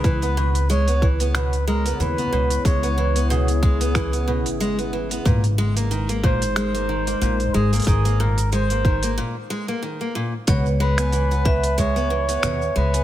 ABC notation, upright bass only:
X:1
M:4/4
L:1/16
Q:"Swing 16ths" 1/4=92
K:C#dor
V:1 name="Upright bass" clef=bass
C,,12 D,, z C,, z | C,,8- C,,3 G,,,4- G,,, | G,,,12 A,,, z G,,, z | G,,,8 z8 |
C,,12 D,, z C,, z |]